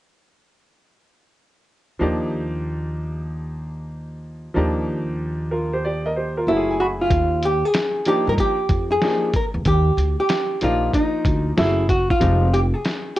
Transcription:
1.99 upright bass D#2, grand piano F3 A#3 D4 D#4 G4
4.54 upright bass D#2, grand piano F3 A#3 D4 D#4 G4
5.51 grand piano F4 A#4
5.73 grand piano G4 C5
5.85 grand piano G4 D5
6.06 grand piano A#4 D#5
6.16 grand piano G4 C5
6.37 grand piano F4 A#4
6.47 upright bass F#1, grand piano F#3 A3 C#4 E4 F#4 E5, hollow-body jazz guitar E4
6.57 grand piano G#4
6.71 grand piano G#5
6.80 hollow-body jazz guitar F#4, grand piano B5
7.02 hollow-body jazz guitar F4
7.11 upright bass D#2, kick, closed hi-hat
7.43 hollow-body jazz guitar G4, closed hi-hat
7.65 hollow-body jazz guitar G#4
7.74 snare, closed hi-hat
8.05 grand piano F3 A#3 D4 D#4 G4, hollow-body jazz guitar G4, closed hi-hat
8.27 upright bass G2, hollow-body jazz guitar A#4
8.38 hollow-body jazz guitar G4, kick, closed hi-hat
8.69 upright bass F2, kick, closed hi-hat
8.92 hollow-body jazz guitar G#4
9.02 grand piano F3 A#3 D4 D#4 G4, snare, closed hi-hat
9.33 hollow-body jazz guitar A#4, kick, closed hi-hat
9.54 upright bass E2
9.65 upright bass D#2, hollow-body jazz guitar G4, kick, closed hi-hat
9.97 upright bass D2, closed hi-hat
10.20 hollow-body jazz guitar G4
10.29 snare, closed hi-hat
10.61 upright bass A#1, grand piano F3 A#3 D#4 G4 D5, hollow-body jazz guitar F4, closed hi-hat
10.93 hollow-body jazz guitar D#4, kick, closed hi-hat
11.25 upright bass D2, kick, closed hi-hat
11.57 upright bass F#1, grand piano F#3 A3 C#4 E4 G#4, hollow-body jazz guitar E4, snare, closed hi-hat
11.89 hollow-body jazz guitar F#4, kick, closed hi-hat
12.11 hollow-body jazz guitar F4, kick
12.20 upright bass F1, grand piano F3 G#3 C4 D#4 G4, kick, closed hi-hat
12.54 hollow-body jazz guitar G4, closed hi-hat
12.74 hollow-body jazz guitar G#4
12.85 snare, closed hi-hat

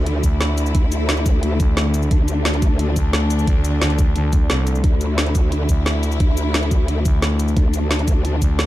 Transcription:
Already playing: wobble bass D2, string section D3 A3 E4
0.06 closed hi-hat
0.24 fm bass D2, kick, closed hi-hat, cabasa
0.41 snare, closed hi-hat
0.58 closed hi-hat, cabasa
0.66 cabasa
0.75 wobble bass D2, kick, closed hi-hat
0.92 closed hi-hat, cabasa
1.09 snare, closed hi-hat
1.17 closed hi-hat
1.26 kick, closed hi-hat, cabasa
1.43 closed hi-hat
1.60 fm bass D2, kick, closed hi-hat, cabasa
1.77 snare, closed hi-hat
1.94 closed hi-hat, cabasa
2.03 cabasa
2.11 wobble bass D2, string section D4, kick, closed hi-hat
2.28 closed hi-hat, cabasa
2.45 snare, closed hi-hat
2.54 closed hi-hat
2.62 kick, closed hi-hat, cabasa
2.79 closed hi-hat
2.96 fm bass D2, kick, closed hi-hat, cabasa
3.13 snare, closed hi-hat
3.30 closed hi-hat, cabasa
3.39 cabasa
3.47 fm bass D2, kick, closed hi-hat
3.65 closed hi-hat, cabasa
3.82 fm bass D2, snare, closed hi-hat
3.90 closed hi-hat
3.99 kick, closed hi-hat, cabasa
4.16 fm bass D2, closed hi-hat
4.33 kick, closed hi-hat, cabasa
4.50 fm bass C2, snare, closed hi-hat
4.67 closed hi-hat, cabasa
4.75 cabasa
4.84 wobble bass D2, string section E4, kick, closed hi-hat
5.01 closed hi-hat, cabasa
5.18 snare, closed hi-hat
5.26 closed hi-hat
5.35 kick, closed hi-hat, cabasa
5.52 closed hi-hat
5.69 fm bass D2, kick, closed hi-hat, cabasa
5.86 snare, closed hi-hat
6.03 closed hi-hat, cabasa
6.12 cabasa
6.20 wobble bass D2, kick, closed hi-hat
6.37 closed hi-hat, cabasa
6.54 snare, closed hi-hat
6.63 closed hi-hat
6.71 kick, closed hi-hat, cabasa
6.88 closed hi-hat
7.05 fm bass D2, kick, closed hi-hat, cabasa
7.22 snare, closed hi-hat
7.39 closed hi-hat, cabasa
7.48 cabasa
7.57 wobble bass D2, string section D4, kick, closed hi-hat
7.74 closed hi-hat, cabasa
7.91 snare, closed hi-hat
7.99 closed hi-hat
8.08 kick, closed hi-hat, cabasa
8.25 closed hi-hat
8.42 fm bass D2, kick, closed hi-hat, cabasa
8.59 snare, closed hi-hat

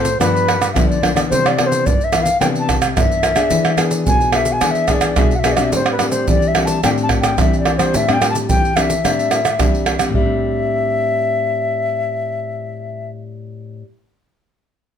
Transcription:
Already playing: nylon-string guitar A2
0.00 flute C5
0.05 pandeiro, maracas
0.20 nylon-string guitar G2 F3 B3 D4, flute B4, pandeiro, tamborim, maracas, surdo
0.36 pandeiro, maracas
0.48 pandeiro, tamborim
0.62 pandeiro, tamborim, maracas
0.73 nylon-string guitar D3 F3 B3 D4, flute E5 F5, pandeiro, tamborim, maracas, surdo
0.89 flute D5, pandeiro, maracas
1.02 nylon-string guitar F3 B3 D4, pandeiro, tamborim
1.15 nylon-string guitar E3 B3 D4, flute D5, pandeiro, tamborim, maracas
1.30 nylon-string guitar C3, flute C5, pandeiro, maracas, surdo
1.46 flute D5, pandeiro, tamborim, maracas
1.59 nylon-string guitar E3 B3 D4, pandeiro, tamborim
1.66 flute C5
1.72 pandeiro, maracas
1.86 nylon-string guitar G2, flute D5, pandeiro, maracas, surdo
2.01 flute E5, pandeiro, maracas
2.13 nylon-string guitar E3 B3 D4, pandeiro, tamborim, maracas
2.22 flute F5, pandeiro, maracas
2.40 nylon-string guitar C3 E3 B3 D4, flute G5, pandeiro, tamborim, maracas, surdo
2.55 flute A5, pandeiro, maracas
2.69 pandeiro, tamborim, maracas, surdo
2.82 pandeiro, tamborim, maracas
2.96 nylon-string guitar G2 E3 B3 D4, flute E5, pandeiro, tamborim, maracas, surdo
3.12 pandeiro, maracas
3.23 pandeiro, tamborim, maracas
3.36 nylon-string guitar B3 D4 G#4, pandeiro, tamborim, maracas
3.50 nylon-string guitar E3, pandeiro, maracas, surdo
3.65 pandeiro, tamborim, maracas
3.77 nylon-string guitar B3 D4 G#4, pandeiro, tamborim, maracas
3.91 pandeiro, maracas
4.06 nylon-string guitar B2, flute G#5, pandeiro, maracas, surdo
4.21 pandeiro, maracas
4.32 nylon-string guitar B3 D4 G#4, flute E5, pandeiro, tamborim
4.45 pandeiro, maracas
4.52 flute G#5
4.61 nylon-string guitar E3 B3 D4 G#4, pandeiro, tamborim, maracas, surdo
4.71 flute E5
4.75 pandeiro, maracas
4.88 nylon-string guitar B3 D4 G#4, flute E5, pandeiro, tamborim, maracas, surdo
4.94 flute D5
5.01 pandeiro, tamborim, maracas
5.16 nylon-string guitar B2 B3 D4 G#4, flute E5, pandeiro, tamborim, maracas, surdo
5.31 pandeiro, maracas
5.35 flute E5 F#5
5.44 nylon-string guitar B3 D4 G#4, pandeiro, tamborim, maracas
5.52 flute D5 E5
5.57 nylon-string guitar G3 C4 D4, pandeiro, tamborim, maracas
5.72 nylon-string guitar A2, flute C5, pandeiro, maracas, surdo
5.86 pandeiro, tamborim, maracas
5.92 flute B4
5.99 nylon-string guitar G3 C4 D4, pandeiro, tamborim, maracas
6.11 flute C5, pandeiro, maracas
6.28 nylon-string guitar E3, flute D5, pandeiro, maracas, surdo
6.42 pandeiro, maracas
6.48 flute E5
6.55 nylon-string guitar G3 C4 D4, pandeiro, tamborim
6.65 flute A5, pandeiro, maracas
6.84 nylon-string guitar A2 G3 C4 D4, flute G5, pandeiro, tamborim, maracas, surdo
6.98 pandeiro, maracas
7.03 flute A5
7.09 pandeiro, tamborim, surdo
7.20 flute G5, pandeiro, tamborim, maracas
7.38 nylon-string guitar E3 G3 C4 D4, flute E5, pandeiro, tamborim, maracas, surdo
7.53 pandeiro, maracas
7.60 flute D5
7.65 pandeiro, tamborim
7.78 nylon-string guitar G3 C4 D4, flute C5, pandeiro, tamborim, maracas
7.94 nylon-string guitar A2, flute E5, pandeiro, maracas, surdo
8.09 nylon-string guitar G3 C4 D4, pandeiro, tamborim, maracas
8.13 flute G5
8.21 nylon-string guitar G3 C4 D4, pandeiro, tamborim, maracas
8.30 flute A5
8.35 pandeiro, maracas
8.49 nylon-string guitar E3, flute G5, pandeiro, maracas, surdo
8.65 pandeiro, maracas
8.76 nylon-string guitar G3 C4 D4, flute E5, pandeiro, tamborim, maracas
8.90 pandeiro, maracas
9.04 nylon-string guitar A2 G3 C4 D4, pandeiro, tamborim, maracas, surdo
9.19 pandeiro, maracas
9.31 pandeiro, tamborim, maracas
9.45 pandeiro, tamborim, maracas
9.59 nylon-string guitar E3 G3 C4 D4, pandeiro, tamborim, maracas, surdo
9.74 pandeiro, maracas
9.86 pandeiro, tamborim
9.99 nylon-string guitar G3 C4 D4, pandeiro, tamborim, maracas
10.10 nylon-string guitar A2
10.14 nylon-string guitar G3, flute E5, surdo
10.20 nylon-string guitar C4
10.25 nylon-string guitar D4

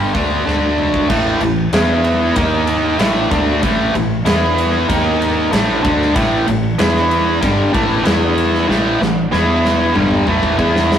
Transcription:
Already playing: fretless electric bass G1, overdriven electric guitar G2 D3 G3
0.14 fretless electric bass D2, overdriven electric guitar D3 A3 D4, kick, open hi-hat
0.46 fretless electric bass D2, overdriven electric guitar D3 A3 D4, snare
0.78 mid tom
0.94 kick
1.09 fretless electric bass A1, overdriven electric guitar A2 E3 A3, kick, crash
1.41 fretless electric bass A1, overdriven electric guitar A2 E3, ride
1.73 fretless electric bass E2, overdriven electric guitar E3 B3 E4, snare, ride
2.04 ride
2.36 fretless electric bass D#2, overdriven electric guitar D#3 A#3 D#4, kick, ride
2.67 ride
2.99 fretless electric bass A1, overdriven electric guitar A2 E3 A3, snare, ride
3.31 fretless electric bass D2, overdriven electric guitar D3 A3 D4, kick, ride
3.62 fretless electric bass A1, overdriven electric guitar A2 E3 A3, kick, ride
3.94 fretless electric bass A1, overdriven electric guitar A2 E3, ride
4.25 fretless electric bass E2, overdriven electric guitar E3 B3 E4, snare, ride
4.58 ride
4.88 fretless electric bass D#2, overdriven electric guitar D#3 A#3 D#4, kick, ride
5.22 ride
5.51 fretless electric bass A1, overdriven electric guitar A2 E3 A3, snare, ride
5.83 fretless electric bass D2, overdriven electric guitar D3 A3 D4, kick, ride
6.02 snare
6.15 fretless electric bass A1, overdriven electric guitar A2 E3 A3, kick, ride
6.48 fretless electric bass A1, overdriven electric guitar A2 E3, ride
6.79 fretless electric bass E2, overdriven electric guitar E3 B3 E4, snare, ride
6.96 snare
7.11 ride
7.41 fretless electric bass G1, overdriven electric guitar G2 D3 G3, kick, ride
7.73 fretless electric bass A1, overdriven electric guitar A2 E3 A3, kick, ride
8.05 fretless electric bass E2, overdriven electric guitar E3 B3 E4, snare, ride
8.38 ride
8.55 snare
8.69 fretless electric bass A1, overdriven electric guitar A2 E3 A3, snare
9.01 fretless electric bass A1, overdriven electric guitar A2 E3, snare
9.32 fretless electric bass E2, overdriven electric guitar E3 B3 E4, snare
9.65 snare
9.95 fretless electric bass G1, overdriven electric guitar G2 D3 G3, mid tom
10.11 mid tom
10.27 fretless electric bass A1, overdriven electric guitar A2 E3 A3, mid tom
10.43 kick
10.58 fretless electric bass E2, overdriven electric guitar E3 B3 E4, kick
10.76 snare
10.92 snare

